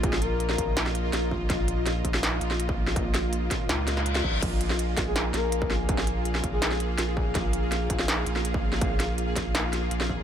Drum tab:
CC |----------------|----------------|----------------|x---------------|
HH |x-x-x-x-x-x-x---|x-x-x-x-x-x-x---|x-x-x-x-x-x-x---|x-x-x-x-x-x-x---|
SD |-o---o--oo--o---|o---o--oo--o---o|--o---o-o-oo-o--|---o--o-o-o---o-|
BD |o-----o-------o-|o-----o------o--|o-----o-------o-|o-----o------o--|

CC |----------------|----------------|----------------|
HH |x-x-x-x-x-x-x---|x-x-x-x-x-x-x---|x-x-x-x-x-x-x---|
SD |-o---o--oo--o---|o---o--oo--o---o|--o---o-o-o--o--|
BD |o-----o-------o-|o-----o------o--|o-----o-------o-|